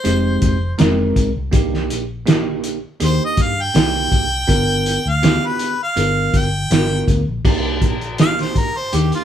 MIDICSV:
0, 0, Header, 1, 5, 480
1, 0, Start_track
1, 0, Key_signature, -3, "minor"
1, 0, Tempo, 739827
1, 994, Time_signature, 4, 2, 24, 8
1, 5995, End_track
2, 0, Start_track
2, 0, Title_t, "Harmonica"
2, 0, Program_c, 0, 22
2, 0, Note_on_c, 0, 72, 95
2, 498, Note_off_c, 0, 72, 0
2, 1979, Note_on_c, 0, 72, 93
2, 2086, Note_off_c, 0, 72, 0
2, 2107, Note_on_c, 0, 75, 83
2, 2215, Note_on_c, 0, 77, 84
2, 2224, Note_off_c, 0, 75, 0
2, 2347, Note_on_c, 0, 79, 106
2, 2356, Note_off_c, 0, 77, 0
2, 3302, Note_on_c, 0, 77, 87
2, 3312, Note_off_c, 0, 79, 0
2, 3547, Note_on_c, 0, 71, 80
2, 3556, Note_off_c, 0, 77, 0
2, 3767, Note_off_c, 0, 71, 0
2, 3780, Note_on_c, 0, 77, 78
2, 4133, Note_on_c, 0, 79, 88
2, 4142, Note_off_c, 0, 77, 0
2, 4588, Note_off_c, 0, 79, 0
2, 5328, Note_on_c, 0, 77, 97
2, 5440, Note_off_c, 0, 77, 0
2, 5458, Note_on_c, 0, 72, 81
2, 5567, Note_on_c, 0, 70, 90
2, 5577, Note_off_c, 0, 72, 0
2, 5694, Note_on_c, 0, 72, 83
2, 5704, Note_off_c, 0, 70, 0
2, 5804, Note_on_c, 0, 67, 83
2, 5814, Note_off_c, 0, 72, 0
2, 5918, Note_off_c, 0, 67, 0
2, 5935, Note_on_c, 0, 65, 71
2, 5995, Note_off_c, 0, 65, 0
2, 5995, End_track
3, 0, Start_track
3, 0, Title_t, "Tine electric piano"
3, 0, Program_c, 1, 4
3, 24, Note_on_c, 1, 56, 79
3, 26, Note_on_c, 1, 60, 74
3, 27, Note_on_c, 1, 63, 70
3, 30, Note_on_c, 1, 67, 86
3, 359, Note_off_c, 1, 56, 0
3, 360, Note_off_c, 1, 60, 0
3, 361, Note_off_c, 1, 63, 0
3, 362, Note_off_c, 1, 67, 0
3, 507, Note_on_c, 1, 56, 89
3, 508, Note_on_c, 1, 60, 78
3, 510, Note_on_c, 1, 63, 76
3, 511, Note_on_c, 1, 70, 98
3, 840, Note_off_c, 1, 56, 0
3, 841, Note_off_c, 1, 60, 0
3, 842, Note_off_c, 1, 63, 0
3, 842, Note_off_c, 1, 70, 0
3, 982, Note_on_c, 1, 58, 84
3, 984, Note_on_c, 1, 62, 77
3, 986, Note_on_c, 1, 63, 72
3, 989, Note_on_c, 1, 67, 90
3, 1318, Note_off_c, 1, 58, 0
3, 1318, Note_off_c, 1, 62, 0
3, 1320, Note_off_c, 1, 63, 0
3, 1321, Note_off_c, 1, 67, 0
3, 1465, Note_on_c, 1, 58, 88
3, 1467, Note_on_c, 1, 62, 84
3, 1469, Note_on_c, 1, 63, 80
3, 1470, Note_on_c, 1, 67, 88
3, 1799, Note_off_c, 1, 58, 0
3, 1800, Note_off_c, 1, 62, 0
3, 1801, Note_off_c, 1, 63, 0
3, 1801, Note_off_c, 1, 67, 0
3, 1945, Note_on_c, 1, 58, 73
3, 1947, Note_on_c, 1, 62, 70
3, 1949, Note_on_c, 1, 63, 61
3, 1950, Note_on_c, 1, 67, 81
3, 2278, Note_off_c, 1, 58, 0
3, 2280, Note_off_c, 1, 62, 0
3, 2280, Note_off_c, 1, 63, 0
3, 2281, Note_off_c, 1, 67, 0
3, 2427, Note_on_c, 1, 58, 77
3, 2428, Note_on_c, 1, 62, 66
3, 2429, Note_on_c, 1, 63, 63
3, 2431, Note_on_c, 1, 67, 73
3, 2759, Note_off_c, 1, 58, 0
3, 2760, Note_off_c, 1, 62, 0
3, 2760, Note_off_c, 1, 63, 0
3, 2761, Note_off_c, 1, 67, 0
3, 2903, Note_on_c, 1, 62, 82
3, 2904, Note_on_c, 1, 59, 90
3, 2904, Note_on_c, 1, 65, 70
3, 2907, Note_on_c, 1, 70, 91
3, 3237, Note_off_c, 1, 62, 0
3, 3238, Note_off_c, 1, 59, 0
3, 3238, Note_off_c, 1, 65, 0
3, 3239, Note_off_c, 1, 70, 0
3, 3389, Note_on_c, 1, 59, 75
3, 3390, Note_on_c, 1, 62, 69
3, 3392, Note_on_c, 1, 65, 66
3, 3394, Note_on_c, 1, 67, 77
3, 3720, Note_off_c, 1, 59, 0
3, 3721, Note_off_c, 1, 62, 0
3, 3722, Note_off_c, 1, 65, 0
3, 3722, Note_off_c, 1, 67, 0
3, 3868, Note_on_c, 1, 59, 67
3, 3869, Note_on_c, 1, 62, 64
3, 3871, Note_on_c, 1, 65, 61
3, 3872, Note_on_c, 1, 70, 73
3, 4200, Note_off_c, 1, 59, 0
3, 4200, Note_off_c, 1, 62, 0
3, 4201, Note_off_c, 1, 65, 0
3, 4202, Note_off_c, 1, 70, 0
3, 4351, Note_on_c, 1, 59, 77
3, 4352, Note_on_c, 1, 62, 71
3, 4354, Note_on_c, 1, 65, 69
3, 4355, Note_on_c, 1, 70, 78
3, 4681, Note_off_c, 1, 59, 0
3, 4682, Note_off_c, 1, 62, 0
3, 4683, Note_off_c, 1, 65, 0
3, 4683, Note_off_c, 1, 70, 0
3, 4832, Note_on_c, 1, 58, 82
3, 4833, Note_on_c, 1, 62, 81
3, 4834, Note_on_c, 1, 63, 70
3, 4834, Note_on_c, 1, 67, 88
3, 5162, Note_off_c, 1, 58, 0
3, 5162, Note_off_c, 1, 62, 0
3, 5163, Note_off_c, 1, 63, 0
3, 5163, Note_off_c, 1, 67, 0
3, 5312, Note_on_c, 1, 62, 65
3, 5313, Note_on_c, 1, 58, 71
3, 5314, Note_on_c, 1, 63, 64
3, 5316, Note_on_c, 1, 67, 78
3, 5642, Note_off_c, 1, 58, 0
3, 5642, Note_off_c, 1, 62, 0
3, 5643, Note_off_c, 1, 63, 0
3, 5644, Note_off_c, 1, 67, 0
3, 5791, Note_on_c, 1, 58, 72
3, 5792, Note_on_c, 1, 62, 63
3, 5794, Note_on_c, 1, 63, 63
3, 5796, Note_on_c, 1, 67, 83
3, 5995, Note_off_c, 1, 58, 0
3, 5995, Note_off_c, 1, 62, 0
3, 5995, Note_off_c, 1, 63, 0
3, 5995, Note_off_c, 1, 67, 0
3, 5995, End_track
4, 0, Start_track
4, 0, Title_t, "Fingered electric bass"
4, 0, Program_c, 2, 33
4, 37, Note_on_c, 2, 29, 100
4, 238, Note_off_c, 2, 29, 0
4, 273, Note_on_c, 2, 29, 83
4, 476, Note_off_c, 2, 29, 0
4, 519, Note_on_c, 2, 29, 89
4, 718, Note_off_c, 2, 29, 0
4, 754, Note_on_c, 2, 36, 88
4, 862, Note_off_c, 2, 36, 0
4, 887, Note_on_c, 2, 36, 76
4, 979, Note_off_c, 2, 36, 0
4, 994, Note_on_c, 2, 36, 84
4, 1239, Note_off_c, 2, 36, 0
4, 1239, Note_on_c, 2, 34, 94
4, 1841, Note_off_c, 2, 34, 0
4, 1956, Note_on_c, 2, 39, 86
4, 2063, Note_off_c, 2, 39, 0
4, 2190, Note_on_c, 2, 43, 93
4, 2393, Note_off_c, 2, 43, 0
4, 2432, Note_on_c, 2, 36, 87
4, 2634, Note_off_c, 2, 36, 0
4, 2673, Note_on_c, 2, 36, 78
4, 2875, Note_off_c, 2, 36, 0
4, 2912, Note_on_c, 2, 31, 94
4, 3221, Note_off_c, 2, 31, 0
4, 3281, Note_on_c, 2, 38, 82
4, 3482, Note_off_c, 2, 38, 0
4, 3873, Note_on_c, 2, 31, 94
4, 4074, Note_off_c, 2, 31, 0
4, 4112, Note_on_c, 2, 31, 83
4, 4313, Note_off_c, 2, 31, 0
4, 4354, Note_on_c, 2, 31, 86
4, 4554, Note_off_c, 2, 31, 0
4, 4592, Note_on_c, 2, 38, 92
4, 4700, Note_off_c, 2, 38, 0
4, 4727, Note_on_c, 2, 34, 69
4, 4818, Note_off_c, 2, 34, 0
4, 4833, Note_on_c, 2, 36, 86
4, 5070, Note_off_c, 2, 36, 0
4, 5070, Note_on_c, 2, 34, 97
4, 5676, Note_off_c, 2, 34, 0
4, 5798, Note_on_c, 2, 39, 89
4, 5904, Note_off_c, 2, 39, 0
4, 5995, End_track
5, 0, Start_track
5, 0, Title_t, "Drums"
5, 32, Note_on_c, 9, 42, 84
5, 97, Note_off_c, 9, 42, 0
5, 271, Note_on_c, 9, 42, 64
5, 273, Note_on_c, 9, 36, 84
5, 336, Note_off_c, 9, 42, 0
5, 338, Note_off_c, 9, 36, 0
5, 510, Note_on_c, 9, 42, 76
5, 517, Note_on_c, 9, 38, 107
5, 575, Note_off_c, 9, 42, 0
5, 582, Note_off_c, 9, 38, 0
5, 754, Note_on_c, 9, 36, 76
5, 755, Note_on_c, 9, 42, 59
5, 818, Note_off_c, 9, 36, 0
5, 820, Note_off_c, 9, 42, 0
5, 991, Note_on_c, 9, 42, 84
5, 993, Note_on_c, 9, 36, 106
5, 1056, Note_off_c, 9, 42, 0
5, 1058, Note_off_c, 9, 36, 0
5, 1129, Note_on_c, 9, 38, 32
5, 1193, Note_off_c, 9, 38, 0
5, 1235, Note_on_c, 9, 42, 62
5, 1300, Note_off_c, 9, 42, 0
5, 1473, Note_on_c, 9, 42, 78
5, 1480, Note_on_c, 9, 38, 104
5, 1538, Note_off_c, 9, 42, 0
5, 1545, Note_off_c, 9, 38, 0
5, 1711, Note_on_c, 9, 42, 60
5, 1776, Note_off_c, 9, 42, 0
5, 1949, Note_on_c, 9, 42, 76
5, 2014, Note_off_c, 9, 42, 0
5, 2188, Note_on_c, 9, 42, 60
5, 2190, Note_on_c, 9, 36, 78
5, 2253, Note_off_c, 9, 42, 0
5, 2255, Note_off_c, 9, 36, 0
5, 2432, Note_on_c, 9, 42, 74
5, 2439, Note_on_c, 9, 38, 106
5, 2497, Note_off_c, 9, 42, 0
5, 2504, Note_off_c, 9, 38, 0
5, 2671, Note_on_c, 9, 36, 82
5, 2672, Note_on_c, 9, 42, 55
5, 2736, Note_off_c, 9, 36, 0
5, 2737, Note_off_c, 9, 42, 0
5, 2912, Note_on_c, 9, 36, 97
5, 2914, Note_on_c, 9, 42, 69
5, 2977, Note_off_c, 9, 36, 0
5, 2979, Note_off_c, 9, 42, 0
5, 3154, Note_on_c, 9, 42, 59
5, 3219, Note_off_c, 9, 42, 0
5, 3394, Note_on_c, 9, 42, 77
5, 3401, Note_on_c, 9, 38, 107
5, 3459, Note_off_c, 9, 42, 0
5, 3466, Note_off_c, 9, 38, 0
5, 3629, Note_on_c, 9, 42, 58
5, 3694, Note_off_c, 9, 42, 0
5, 3873, Note_on_c, 9, 42, 77
5, 3938, Note_off_c, 9, 42, 0
5, 4111, Note_on_c, 9, 36, 90
5, 4112, Note_on_c, 9, 42, 64
5, 4176, Note_off_c, 9, 36, 0
5, 4177, Note_off_c, 9, 42, 0
5, 4354, Note_on_c, 9, 42, 81
5, 4361, Note_on_c, 9, 38, 99
5, 4418, Note_off_c, 9, 42, 0
5, 4426, Note_off_c, 9, 38, 0
5, 4591, Note_on_c, 9, 36, 85
5, 4594, Note_on_c, 9, 42, 59
5, 4656, Note_off_c, 9, 36, 0
5, 4659, Note_off_c, 9, 42, 0
5, 4831, Note_on_c, 9, 36, 100
5, 4833, Note_on_c, 9, 49, 92
5, 4896, Note_off_c, 9, 36, 0
5, 4897, Note_off_c, 9, 49, 0
5, 5071, Note_on_c, 9, 36, 80
5, 5072, Note_on_c, 9, 42, 60
5, 5136, Note_off_c, 9, 36, 0
5, 5137, Note_off_c, 9, 42, 0
5, 5199, Note_on_c, 9, 42, 34
5, 5264, Note_off_c, 9, 42, 0
5, 5310, Note_on_c, 9, 42, 79
5, 5317, Note_on_c, 9, 38, 106
5, 5375, Note_off_c, 9, 42, 0
5, 5382, Note_off_c, 9, 38, 0
5, 5444, Note_on_c, 9, 42, 40
5, 5451, Note_on_c, 9, 38, 33
5, 5509, Note_off_c, 9, 42, 0
5, 5516, Note_off_c, 9, 38, 0
5, 5551, Note_on_c, 9, 36, 80
5, 5553, Note_on_c, 9, 42, 57
5, 5616, Note_off_c, 9, 36, 0
5, 5618, Note_off_c, 9, 42, 0
5, 5793, Note_on_c, 9, 42, 75
5, 5858, Note_off_c, 9, 42, 0
5, 5918, Note_on_c, 9, 42, 37
5, 5983, Note_off_c, 9, 42, 0
5, 5995, End_track
0, 0, End_of_file